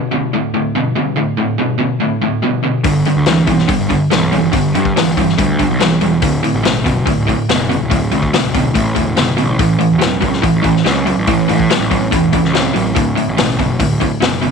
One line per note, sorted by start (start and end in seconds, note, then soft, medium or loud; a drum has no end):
0.11 0.30 D2 medium
0.11 0.31 B2 medium
0.33 0.52 D2 medium
0.33 0.52 A2 medium
0.54 0.73 D2 medium
0.54 0.73 A2 medium
0.75 0.94 D2 medium
0.75 0.94 B2 medium
0.96 1.15 D2 medium
0.96 1.15 B2 medium
1.17 1.36 D2 medium
1.17 1.36 A2 medium
1.38 1.57 D2 medium
1.38 1.57 A2 medium
1.59 1.78 D2 medium
1.59 1.78 B2 medium
1.79 1.98 D2 medium
1.79 1.99 B2 medium
2.01 2.20 D2 medium
2.01 2.20 A2 medium
2.22 2.41 D2 medium
2.22 2.41 A2 medium
2.42 2.62 D2 medium
2.42 2.62 B2 medium
2.63 2.82 D2 medium
2.63 2.83 B2 medium
2.84 3.03 G1 medium
2.84 3.03 G2 medium
2.84 3.04 D3 medium
2.84 kick loud
2.84 open hi-hat medium
3.05 3.25 G2 medium
3.05 3.25 D3 medium
3.05 open hi-hat soft
3.16 3.48 D2 medium
3.26 3.46 G2 medium
3.26 3.46 E3 medium
3.26 snare loud
3.26 open hi-hat medium
3.47 3.66 B1 medium
3.47 3.66 G2 medium
3.47 3.67 E3 medium
3.47 kick medium
3.47 open hi-hat soft
3.58 snare soft
3.68 3.87 G2 medium
3.68 3.88 D3 medium
3.68 kick loud
3.68 open hi-hat medium
3.80 3.98 G1 medium
3.89 4.09 G2 medium
3.89 4.09 D3 medium
3.89 kick medium
3.89 open hi-hat soft
4.11 4.38 B1 medium
4.11 4.30 G2 medium
4.11 4.30 E3 medium
4.11 snare medium
4.11 open hi-hat medium
4.32 4.51 G2 medium
4.32 4.52 E3 medium
4.32 open hi-hat soft
4.43 4.75 G1 medium
4.53 4.72 G2 medium
4.53 4.72 D3 medium
4.53 kick loud
4.53 open hi-hat medium
4.74 4.92 G2 medium
4.74 4.94 G2 medium
4.74 4.94 D3 medium
4.74 open hi-hat medium
4.85 kick medium
4.96 5.15 G2 medium
4.96 5.15 E3 medium
4.96 snare loud
4.96 open hi-hat medium
5.06 5.33 G1 medium
5.17 5.36 G2 medium
5.17 5.36 E3 medium
5.17 kick medium
5.17 open hi-hat soft
5.29 snare soft
5.38 5.65 D2 medium
5.38 5.57 G2 medium
5.38 5.57 D3 medium
5.38 kick loud
5.38 open hi-hat medium
5.59 5.78 G2 medium
5.59 5.78 D3 medium
5.59 kick medium
5.59 open hi-hat soft
5.70 5.97 B1 medium
5.80 5.99 G2 medium
5.80 5.99 E3 medium
5.80 snare loud
5.80 open hi-hat medium
6.01 6.23 E1 medium
6.01 6.20 G2 medium
6.01 6.20 E3 medium
6.01 open hi-hat soft
6.22 6.40 D1 medium
6.22 6.41 D2 medium
6.22 6.41 A2 medium
6.22 kick loud
6.22 open hi-hat medium
6.43 6.62 D2 medium
6.43 6.62 A2 medium
6.43 open hi-hat soft
6.54 6.86 A1 medium
6.64 6.83 D2 medium
6.64 6.83 B2 medium
6.64 snare loud
6.64 open hi-hat medium
6.84 7.04 F#1 medium
6.84 7.04 D2 medium
6.84 7.04 B2 medium
6.84 kick medium
6.84 open hi-hat soft
7.06 7.25 D2 medium
7.06 7.25 A2 medium
7.06 kick loud
7.06 open hi-hat medium
7.18 7.35 D1 medium
7.27 7.46 D2 medium
7.27 7.47 A2 medium
7.27 kick medium
7.27 open hi-hat soft
7.49 7.76 F#1 medium
7.49 7.68 D2 medium
7.49 7.68 B2 medium
7.49 snare loud
7.49 open hi-hat medium
7.70 7.89 D2 medium
7.70 7.89 B2 medium
7.70 open hi-hat soft
7.81 8.14 D1 medium
7.90 8.10 D2 medium
7.90 8.10 A2 medium
7.90 kick loud
7.90 open hi-hat medium
8.11 8.31 D2 medium
8.11 8.30 D2 medium
8.11 8.31 A2 medium
8.11 open hi-hat soft
8.23 kick medium
8.33 8.52 D2 medium
8.33 8.53 B2 medium
8.33 snare loud
8.33 open hi-hat medium
8.45 8.71 D1 medium
8.54 8.73 D2 medium
8.54 8.73 B2 medium
8.54 kick medium
8.54 open hi-hat medium
8.74 8.93 A1 medium
8.74 8.94 D2 medium
8.74 8.94 A2 medium
8.74 kick loud
8.74 open hi-hat medium
8.95 9.15 E1 medium
8.95 9.14 D2 medium
8.95 9.15 A2 medium
8.95 kick medium
8.95 open hi-hat medium
9.17 9.37 F#1 medium
9.17 9.36 D2 medium
9.17 9.36 B2 medium
9.17 snare medium
9.17 open hi-hat medium
9.37 9.59 A1 medium
9.37 9.57 D2 medium
9.37 9.57 B2 medium
9.37 open hi-hat soft
9.59 9.77 A1 medium
9.59 9.78 A2 medium
9.59 9.78 E3 medium
9.59 kick loud
9.59 open hi-hat medium
9.79 9.98 A2 medium
9.79 9.99 E3 medium
9.79 open hi-hat soft
9.92 10.24 E1 medium
9.99 10.19 A2 medium
9.99 10.20 F#3 medium
9.99 snare loud
9.99 open hi-hat medium
10.21 10.40 C#2 medium
10.21 10.41 A2 medium
10.21 10.41 F#3 medium
10.21 kick medium
10.21 open hi-hat soft
10.33 snare soft
10.42 10.61 A2 medium
10.42 10.62 E3 medium
10.42 kick loud
10.42 open hi-hat medium
10.55 10.73 A1 medium
10.63 10.83 A2 medium
10.63 10.83 E3 medium
10.63 kick medium
10.63 open hi-hat soft
10.76 snare soft
10.84 11.13 C#2 medium
10.84 11.04 A2 medium
10.84 11.04 F#3 medium
10.84 snare medium
10.84 open hi-hat medium
11.06 11.25 A2 medium
11.06 11.25 F#3 medium
11.06 open hi-hat soft
11.18 11.51 A1 medium
11.27 11.47 A2 medium
11.27 11.47 E3 medium
11.27 kick loud
11.27 open hi-hat medium
11.48 11.67 A2 medium
11.48 11.68 E3 medium
11.48 open hi-hat medium
11.60 kick medium
11.70 11.89 A2 medium
11.70 11.89 F#3 medium
11.70 snare loud
11.70 open hi-hat medium
11.80 12.07 A1 medium
11.91 12.10 A2 medium
11.91 12.10 F#3 medium
11.91 kick medium
11.91 open hi-hat soft
12.11 12.39 E1 medium
12.11 12.31 A2 medium
12.11 12.31 E3 medium
12.11 kick loud
12.11 open hi-hat medium
12.33 12.52 A2 medium
12.33 12.52 E3 medium
12.33 kick medium
12.33 open hi-hat medium
12.44 12.71 C#2 medium
12.44 snare soft
12.53 12.72 A2 medium
12.53 12.73 F#3 loud
12.53 snare loud
12.53 open hi-hat medium
12.73 12.97 A1 medium
12.73 12.93 A2 medium
12.73 12.94 F#3 medium
12.73 open hi-hat soft
12.95 13.14 D1 medium
12.95 13.14 D2 medium
12.95 13.15 A2 medium
12.95 kick loud
12.95 open hi-hat medium
13.15 13.35 D2 medium
13.15 13.36 A2 medium
13.15 open hi-hat soft
13.29 13.60 A1 medium
13.37 13.57 D2 medium
13.37 13.57 B2 loud
13.37 snare loud
13.37 open hi-hat medium
13.59 13.77 F#1 medium
13.59 13.78 D2 medium
13.59 13.78 B2 medium
13.59 kick medium
13.59 open hi-hat soft
13.79 13.99 D2 medium
13.79 13.99 A2 medium
13.79 kick loud
13.79 open hi-hat medium
13.90 14.09 D1 medium
14.00 14.19 D2 medium
14.00 14.20 A2 medium
14.00 kick medium
14.00 open hi-hat soft
14.20 14.49 F#1 loud
14.20 14.40 D2 medium
14.20 14.41 B2 medium
14.20 snare loud
14.20 open hi-hat medium
14.41 14.51 D2 medium
14.41 14.51 B2 medium
14.41 open hi-hat soft